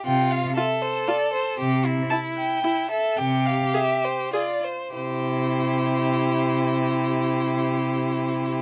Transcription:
X:1
M:3/4
L:1/8
Q:1/4=102
K:C
V:1 name="Violin"
g f e c d c | z2 a g2 e | g f e c d c | c6- |
c6 |]
V:2 name="Violin"
F2 A4 | G E3 E A | G4 F z | G6- |
G6 |]
V:3 name="Viola"
z2 F2 F2 | z2 E2 E2 | z2 _A2 A2 | E6- |
E6 |]
V:4 name="Cello" clef=bass
C,2 z4 | C,2 z4 | C,2 z4 | C,6- |
C,6 |]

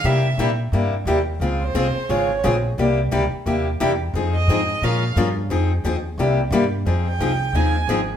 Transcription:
X:1
M:4/4
L:1/16
Q:"Swing" 1/4=176
K:Fm
V:1 name="Violin"
=e4 z12 | z2 c6 d4 z4 | z16 | z2 e6 f4 z4 |
z16 | z2 g6 a4 z4 |]
V:2 name="Steel-string acoustic guitar"
[C,G,B,=EG]2 z2 [C,G,B,EG] z3 [C,G,B,EG]2 z2 [C,G,B,EG] z3 | [D,A,CFA]2 z2 [D,A,CFA] z3 [D,A,CFA]2 z2 [D,A,CFA] z3 | [C,G,B,=EG]2 z2 [C,G,B,EG] z3 [C,G,B,EG]2 z2 [C,G,B,EG] z3 | [F,CEA]2 z2 [F,CEA] z3 [F,A,DFB]2 z2 [F,A,DFB] z3 |
[F,CEA]2 z2 [F,CEA] z3 [C,G,B,=EG]2 z2 [C,G,B,EG] z3 | [F,CEA]2 z2 [F,CEA] z3 [F,CEA]2 z2 [F,CEA] z3 |]
V:3 name="Upright bass" clef=bass
C,4 B,,4 G,,4 ^D,,4 | D,,4 C,,2 z2 A,,,4 B,,,4 | C,,4 D,,2 z2 ^D,,4 =E,,4 | F,,4 A,,4 B,,4 G,,4 |
F,,4 E,,4 C,,4 G,,4 | F,,4 C,,4 E,,4 A,,,4 |]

